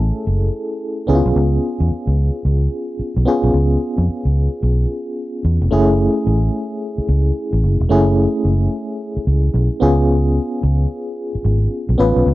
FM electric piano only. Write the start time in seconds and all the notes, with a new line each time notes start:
Already playing: A3 C#4 E4 G#4 A4
1.07 B3 C#4 E4 G#4
1.15 F4
3.25 B3 C#4 F4 G#4
5.71 A3 C#4 E4 G#4
7.89 A3 C#4 E4 G#4
9.80 B3 C#4 F4 G#4
11.98 B3 C#4 F4 B4